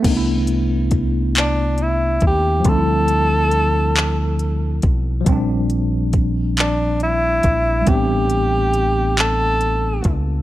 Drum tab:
CC |x-----|------|------|------|
HH |xxxxxx|xxxxxx|xxxxxx|xxxxxx|
CP |---x--|---x--|---x--|---x--|
BD |o-o--o|o----o|o-o--o|o----o|